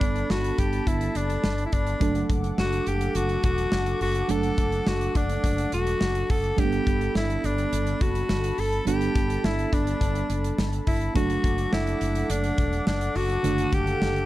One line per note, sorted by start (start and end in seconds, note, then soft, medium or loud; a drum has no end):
0.00 0.22 G1 medium
0.00 1.97 G3 medium
0.00 1.97 B3 medium
0.00 0.32 D4 medium
0.00 1.97 D4 medium
0.00 1.98 A4 medium
0.00 11.11 A4 medium
0.00 1.99 A5 medium
0.00 1.97 B5 medium
0.00 kick loud
0.00 closed hi-hat medium
0.16 closed hi-hat soft
0.30 0.51 G1 medium
0.30 0.60 F#4 medium
0.30 snare loud
0.44 closed hi-hat soft
0.58 0.79 G1 medium
0.58 0.89 G4 medium
0.58 kick medium
0.58 closed hi-hat medium
0.73 closed hi-hat soft
0.87 1.08 G1 loud
0.87 1.18 E4 medium
0.87 kick medium
0.87 closed hi-hat medium
1.01 closed hi-hat soft
1.15 1.36 F#1 medium
1.15 1.65 D4 medium
1.15 closed hi-hat medium
1.30 closed hi-hat soft
1.44 1.65 G1 medium
1.44 snare loud
1.58 closed hi-hat medium
1.66 1.74 E4 medium
1.72 1.93 G1 medium
1.72 2.31 D4 medium
1.72 kick medium
1.72 closed hi-hat medium
1.87 closed hi-hat soft
2.00 2.22 F#1 loud
2.00 4.25 F#3 medium
2.00 4.26 A3 medium
2.00 4.26 D4 medium
2.00 4.26 A4 medium
2.00 6.54 F#5 medium
2.00 6.54 D6 medium
2.00 kick loud
2.00 closed hi-hat medium
2.15 closed hi-hat medium
2.30 2.50 F#1 loud
2.30 kick medium
2.30 closed hi-hat medium
2.44 closed hi-hat soft
2.58 2.79 F#1 medium
2.58 2.89 F#4 medium
2.58 snare loud
2.73 closed hi-hat soft
2.87 3.07 F#1 medium
2.87 3.17 G4 medium
2.87 closed hi-hat medium
3.01 closed hi-hat medium
3.15 3.36 F#1 loud
3.15 3.44 F#4 loud
3.15 closed hi-hat medium
3.29 closed hi-hat soft
3.43 3.64 E1 medium
3.43 3.98 F#4 medium
3.43 kick medium
3.43 closed hi-hat medium
3.58 closed hi-hat medium
3.72 3.93 F#1 medium
3.72 snare loud
3.86 closed hi-hat medium
4.01 4.22 F#1 medium
4.01 4.32 F#4 medium
4.01 open hi-hat medium
4.15 closed hi-hat soft
4.28 4.50 F#1 medium
4.28 6.54 F#3 medium
4.28 6.54 A3 medium
4.28 6.54 D4 medium
4.28 4.89 A4 loud
4.28 6.55 A4 medium
4.28 closed hi-hat medium
4.43 closed hi-hat soft
4.58 4.79 F#1 medium
4.58 kick medium
4.58 closed hi-hat medium
4.72 closed hi-hat soft
4.87 5.07 F#1 medium
4.87 5.18 F#4 loud
4.87 snare loud
5.01 closed hi-hat soft
5.15 5.36 F#1 medium
5.15 5.73 D4 medium
5.15 kick medium
5.15 closed hi-hat medium
5.30 closed hi-hat medium
5.44 5.65 F#1 loud
5.44 kick medium
5.44 closed hi-hat medium
5.58 closed hi-hat soft
5.72 5.93 E1 medium
5.72 6.32 F#4 loud
5.72 closed hi-hat medium
5.87 closed hi-hat medium
6.01 6.22 F#1 medium
6.01 snare loud
6.15 closed hi-hat medium
6.30 6.50 F#1 medium
6.30 6.61 A4 medium
6.30 kick medium
6.30 open hi-hat medium
6.44 closed hi-hat soft
6.57 6.79 G1 medium
6.57 8.82 G3 medium
6.57 6.64 A3 soft
6.57 8.83 D4 medium
6.57 7.16 G4 loud
6.57 8.83 A4 medium
6.57 11.11 A5 medium
6.57 11.11 B5 medium
6.57 kick loud
6.57 closed hi-hat medium
6.64 8.85 B3 medium
6.72 closed hi-hat soft
6.87 7.07 G1 medium
6.87 kick medium
6.87 closed hi-hat medium
7.01 closed hi-hat soft
7.15 7.36 G1 medium
7.15 7.47 E4 medium
7.15 snare medium
7.30 closed hi-hat soft
7.44 7.65 G1 medium
7.44 8.03 D4 medium
7.44 closed hi-hat medium
7.58 closed hi-hat medium
7.72 7.93 G1 loud
7.72 closed hi-hat medium
7.87 closed hi-hat soft
8.01 8.22 F#1 medium
8.01 8.61 F#4 medium
8.01 kick medium
8.01 closed hi-hat medium
8.15 closed hi-hat soft
8.29 8.50 G1 medium
8.29 snare loud
8.44 closed hi-hat medium
8.58 8.79 G1 medium
8.58 8.87 A4 medium
8.58 open hi-hat medium
8.73 closed hi-hat soft
8.85 9.07 G1 loud
8.85 11.11 G3 medium
8.85 11.11 B3 medium
8.85 11.12 D4 medium
8.85 9.46 G4 medium
8.85 11.12 A4 medium
8.85 closed hi-hat medium
9.01 closed hi-hat soft
9.16 9.36 G1 medium
9.16 kick medium
9.16 closed hi-hat medium
9.30 closed hi-hat soft
9.44 9.65 G1 medium
9.44 9.75 E4 medium
9.44 snare loud
9.59 closed hi-hat soft
9.73 9.93 G1 medium
9.73 10.60 D4 medium
9.73 kick medium
9.73 closed hi-hat medium
9.87 closed hi-hat medium
10.01 10.22 G1 loud
10.01 kick medium
10.01 closed hi-hat medium
10.15 closed hi-hat soft
10.30 10.50 F#1 medium
10.30 closed hi-hat medium
10.44 closed hi-hat medium
10.58 10.79 G1 medium
10.58 snare loud
10.73 closed hi-hat medium
10.87 11.08 G1 medium
10.87 11.14 E4 medium
10.87 kick medium
10.87 open hi-hat medium
11.01 closed hi-hat soft
11.14 11.36 F#1 loud
11.14 13.39 F#3 medium
11.14 13.40 A3 medium
11.14 13.40 D4 medium
11.14 11.69 F#4 loud
11.14 14.26 A4 medium
11.14 13.41 A4 medium
11.14 14.26 F#5 medium
11.14 14.26 D6 medium
11.14 kick loud
11.14 closed hi-hat medium
11.30 closed hi-hat medium
11.44 11.65 F#1 medium
11.44 kick medium
11.44 closed hi-hat medium
11.58 closed hi-hat soft
11.73 11.93 F#1 medium
11.73 12.32 E4 medium
11.73 snare loud
11.87 closed hi-hat soft
12.01 12.22 F#1 medium
12.01 closed hi-hat medium
12.15 closed hi-hat medium
12.30 12.50 F#1 loud
12.30 12.87 D4 medium
12.30 closed hi-hat medium
12.44 closed hi-hat soft
12.58 12.79 E1 medium
12.58 kick medium
12.58 closed hi-hat medium
12.73 closed hi-hat medium
12.87 13.07 F#1 medium
12.87 13.18 D4 medium
12.87 snare loud
13.01 closed hi-hat medium
13.15 13.36 F#1 medium
13.15 13.75 F#4 loud
13.15 open hi-hat medium
13.30 closed hi-hat soft
13.43 13.65 F#1 loud
13.43 14.26 D3 medium
13.43 14.26 A3 medium
13.43 14.26 D4 medium
13.43 14.26 A4 medium
13.43 closed hi-hat medium
13.58 closed hi-hat medium
13.73 13.93 F#1 loud
13.73 14.26 G4 loud
13.73 kick medium
13.73 closed hi-hat medium
13.87 closed hi-hat medium
14.01 14.22 F#1 medium
14.01 snare loud
14.16 closed hi-hat medium